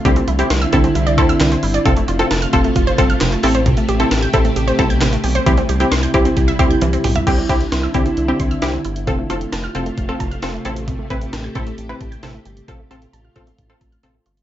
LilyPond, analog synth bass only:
\new Staff \with { instrumentName = "Analog synth bass" } { \clef bass \time 4/4 \key c \major \tempo 4 = 133 c,8 c,8 c,8 c,8 c,8 d,8 c,8 g,,8 | f,,8 f,,8 f,,8 f,,8 f,,8 g,,8 f,,8 a,,8~ | a,,8 a,,8 a,,8 a,,8 a,,8 b,,8 a,,8 b,,8 | c,8 c,8 c,8 c,8 c,8 d,8 c,8 b,,8 |
c,8 c,8 c,8 c,8 c,8 c,8 c,8 g,,8 | f,,8 f,,8 f,,8 f,,8 f,,8 f,,8 f,,8 a,,8~ | a,,8 a,,8 a,,8 a,,8 a,,8 a,,8 a,,8 g,,8 | a,,8 a,,8 a,,8 a,,8 a,,8 a,,8 a,,8 g,,8 | }